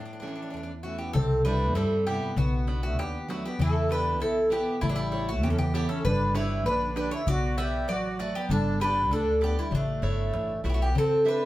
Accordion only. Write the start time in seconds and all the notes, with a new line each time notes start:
0.84 A3
0.99 B3
1.14 C4
1.45 D4
1.75 C4
2.07 B3
2.38 B3
2.85 A3
3.00 B3
3.30 A3
3.46 B3
3.62 E4
3.91 D4
4.21 E4
4.51 B3
4.82 A3
4.89 F#3
4.98 G3
5.29 A3
5.43 C#4
5.51 C#4
5.59 B3
5.75 B3
5.90 C#4
6.05 D4
6.35 E4
6.68 D4
6.99 D4
7.13 E4
7.29 F#4
7.61 G4
7.90 F#4
8.19 A3
8.36 B3
8.51 D4
8.82 D4
9.12 D4
9.42 B3
9.58 G3
9.73 A3
10.66 A3 B3
10.74 A3
10.81 B3
10.96 C4
11.26 D4